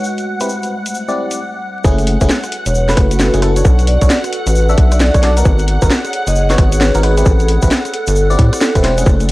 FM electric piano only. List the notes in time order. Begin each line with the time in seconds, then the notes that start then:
0.41 C4 E4 G4 B4
1.08 C4 E4 G4 D5
1.84 A3 C#4 E4 G#4
2.21 A3 C#4 E4 G#4
2.89 A3 C#4 E4 B4
3.34 A3 C#4 E4 G#4
3.42 A3 C#4 E4 A4
3.57 D4 F#4 A4 C#5
4.02 D4 F#4 A4 C#5
4.69 D4 F#4 A4 E5
5.14 D4 F#4 A4 C#5
5.23 D4 F#4 A4 D5
5.37 B3 D#4 F#4 A#4
5.82 B3 D#4 F#4 A#4
6.50 B3 D#4 F#4 C#5
6.95 B3 D#4 F#4 A#4
7.03 B3 D#4 F#4 B4
7.17 C4 E4 G4 B4
7.63 C4 E4 G4 B4
8.30 C4 E4 G4 D5
8.75 C4 E4 G4 B4
8.84 C4 E4 G4 C5
8.98 A3 C#4 E4 G#4